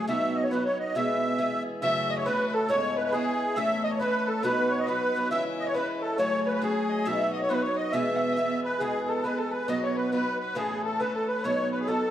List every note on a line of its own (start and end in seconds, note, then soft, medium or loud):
0.08 0.51 B2 medium
0.08 0.50 F#3 medium
0.08 0.51 B3 medium
0.08 0.52 D#4 medium
0.08 0.52 F#4 medium
0.08 0.37 E5 loud
0.36 0.44 D#5 medium
0.43 0.52 C#5 medium
0.51 0.95 F#3 medium
0.51 0.95 B3 medium
0.51 0.96 D#4 medium
0.51 0.96 F#4 medium
0.51 0.64 B4 medium
0.65 0.78 C#5 medium
0.80 0.94 D#5 medium
0.95 1.39 E2 medium
0.95 1.39 B2 medium
0.95 1.38 E3 medium
0.95 1.38 G#3 medium
0.95 1.38 B3 medium
0.95 1.40 G#4 medium
0.95 1.63 E5 loud
1.38 1.82 E3 medium
1.38 1.82 G#3 medium
1.38 1.83 B3 medium
1.38 1.83 G#4 medium
1.82 2.26 F#2 medium
1.82 2.26 C#3 medium
1.82 2.25 E3 medium
1.82 2.26 A3 medium
1.82 2.27 C#4 medium
1.82 2.27 F#4 medium
1.82 2.11 E5 loud
1.82 2.12 E5 medium
2.09 2.17 D#5 medium
2.09 2.18 D#5 medium
2.18 2.26 C#5 medium
2.18 2.28 C#5 medium
2.26 2.68 E3 medium
2.26 2.69 A3 medium
2.26 2.70 C#4 medium
2.26 2.70 F#4 medium
2.26 2.46 B4 loud
2.26 2.55 B4 medium
2.47 2.54 B4 medium
2.54 2.70 A4 medium
2.68 3.13 G#2 medium
2.68 3.13 C#3 medium
2.68 3.11 E3 medium
2.68 3.12 G#3 medium
2.68 3.13 B3 medium
2.68 3.14 E4 medium
2.68 2.95 C#5 loud
2.68 2.98 C#5 medium
2.97 3.03 B4 medium
3.04 3.11 B4 medium
3.04 3.13 B4 medium
3.11 3.55 E3 medium
3.11 3.57 G#3 medium
3.11 3.57 B3 medium
3.11 3.53 G#4 medium
3.11 3.58 G#4 loud
3.15 3.58 E4 medium
3.55 4.00 A2 medium
3.55 3.99 E3 medium
3.55 3.99 A3 medium
3.55 4.00 C#4 medium
3.55 4.01 A4 medium
3.55 3.86 E5 medium
3.55 3.82 E5 loud
3.84 3.92 D#5 medium
3.91 3.99 C#5 medium
3.91 4.00 C#5 medium
3.99 4.43 E3 medium
3.99 4.44 A3 medium
3.99 4.44 C#4 medium
3.99 4.44 A4 medium
3.99 4.28 B4 medium
3.99 4.29 B4 loud
4.27 4.44 A4 medium
4.27 4.43 A4 medium
4.42 4.87 B2 medium
4.42 4.86 F#3 medium
4.42 4.87 B3 medium
4.42 4.87 D#4 medium
4.42 4.88 F#4 medium
4.42 4.71 B4 medium
4.42 4.73 B4 loud
4.70 4.88 C#5 medium
4.70 4.80 C#5 medium
4.79 4.88 D#5 medium
4.86 5.13 F#3 medium
4.86 5.15 B3 medium
4.86 5.15 D#4 medium
4.86 5.16 F#4 medium
4.86 5.30 B4 medium
4.86 5.28 B4 medium
5.15 5.31 F#3 medium
5.15 5.31 B3 medium
5.15 5.32 D#4 medium
5.15 5.32 F#4 medium
5.31 5.75 C#3 medium
5.31 5.73 E3 medium
5.31 5.74 G#3 medium
5.31 5.75 C#4 medium
5.31 5.76 E4 medium
5.31 5.68 E5 medium
5.31 5.44 E5 loud
5.60 5.68 D#5 medium
5.67 5.76 C#5 medium
5.67 5.74 C#5 medium
5.74 6.18 E3 medium
5.74 6.19 G#3 medium
5.74 6.18 C#4 medium
5.74 6.19 E4 medium
5.74 6.03 B4 medium
5.74 5.88 B4 medium
6.02 6.18 A4 medium
6.02 6.17 A4 medium
6.18 6.62 C#3 medium
6.18 6.60 F#3 medium
6.18 6.61 A3 medium
6.18 6.62 C#4 medium
6.18 6.63 G#4 medium
6.18 6.48 C#5 loud
6.18 6.45 C#5 medium
6.47 6.53 B4 medium
6.53 6.63 B4 medium
6.62 7.05 F#3 medium
6.62 7.06 A3 medium
6.62 7.06 C#4 medium
6.62 6.91 G#4 medium
6.62 7.08 G#4 medium
6.62 7.07 G#4 medium
6.89 7.08 D#5 medium
7.05 7.49 B2 medium
7.05 7.48 F#3 medium
7.05 7.49 B3 medium
7.05 7.50 D#4 medium
7.05 7.50 F#4 medium
7.05 7.32 E5 medium
7.05 7.32 E5 loud
7.33 7.40 D#5 medium
7.33 7.41 D#5 medium
7.41 7.51 C#5 medium
7.41 7.49 C#5 medium
7.49 7.93 F#3 medium
7.49 7.94 B3 medium
7.49 7.94 D#4 medium
7.49 7.94 F#4 medium
7.49 7.64 B4 medium
7.49 7.63 B4 medium
7.62 7.77 C#5 medium
7.62 7.76 C#5 medium
7.76 7.92 D#5 medium
7.76 7.94 D#5 medium
7.92 8.37 E2 medium
7.92 8.37 B2 medium
7.92 8.35 E3 medium
7.92 8.36 G#3 medium
7.92 8.38 B3 medium
7.92 8.38 G#4 medium
7.92 8.60 E5 loud
7.92 8.17 E5 medium
8.16 8.22 F#5 soft
8.20 8.34 E5 medium
8.33 8.80 E3 medium
8.33 8.38 D#5 soft
8.37 8.80 G#3 medium
8.37 8.81 B3 medium
8.37 8.81 G#4 medium
8.37 8.64 E5 medium
8.64 8.81 B4 medium
8.79 9.24 E2 medium
8.79 9.24 B2 medium
8.79 9.23 E3 medium
8.79 9.24 G#3 medium
8.79 9.24 B3 medium
8.79 9.09 G#4 loud
8.79 9.10 G#4 medium
8.79 9.25 G#4 medium
9.07 9.24 A4 medium
9.07 9.26 A4 medium
9.24 9.68 E3 medium
9.24 9.69 G#3 medium
9.24 9.68 B3 medium
9.24 9.69 G#4 medium
9.24 9.39 B4 medium
9.38 9.53 A4 medium
9.51 9.70 B4 medium
9.51 9.69 B4 medium
9.68 10.12 B2 medium
9.68 10.11 F#3 medium
9.68 10.11 B3 medium
9.68 10.12 D#4 medium
9.68 10.13 F#4 medium
9.68 9.81 D#5 loud
9.68 9.85 D#5 medium
9.83 9.96 C#5 medium
9.83 9.98 C#5 medium
9.96 10.10 B4 medium
9.96 10.12 B4 medium
10.12 10.55 F#3 medium
10.12 10.56 B3 medium
10.12 10.56 D#4 medium
10.12 10.56 F#4 medium
10.12 10.38 B4 loud
10.12 10.38 B4 medium
10.40 10.58 B4 medium
10.40 10.56 B4 medium
10.55 10.99 A2 medium
10.55 10.99 E3 medium
10.55 10.99 A3 medium
10.55 11.00 C#4 medium
10.55 10.83 G#4 medium
10.55 10.82 G#4 loud
10.55 11.00 A4 medium
10.83 11.01 A4 medium
11.00 11.44 E3 soft
11.00 11.44 A3 medium
11.00 11.44 C#4 medium
11.00 11.45 A4 medium
11.00 11.17 B4 medium
11.00 11.13 B4 medium
11.14 11.27 A4 medium
11.14 11.30 A4 medium
11.28 11.44 B4 medium
11.28 11.45 B4 medium
11.44 11.88 B2 medium
11.44 11.86 F#3 medium
11.44 11.87 B3 medium
11.44 11.88 D#4 medium
11.44 11.89 F#4 medium
11.44 11.74 C#5 medium
11.44 11.70 C#5 loud
11.72 11.79 B4 medium
11.72 11.90 B4 medium
11.80 11.88 G#4 medium
11.87 12.11 F#3 medium
11.87 12.11 B3 medium
11.87 12.11 D#4 medium
11.87 12.11 F#4 medium
11.87 12.11 A4 medium